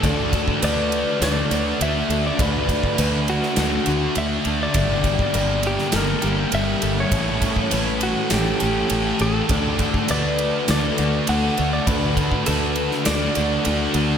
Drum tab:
RD |x-x-x-x-x-x-x-x-|x-x-x-x-x-x-x-x-|x-x-x-x-x-x-x-x-|x-x-x-x-x-x-x-x-|
SD |--------o-------|-------oo-------|-------oo-------|--------o-------|
BD |o-oo------------|o-oo------------|o-oo------------|o-oo------------|

RD |x-x-x-x-x-x-x-x-|x-x-x-x-x-x-x-x-|
SD |--------o-------|-------oo-------|
BD |o-oo------------|o-oo------------|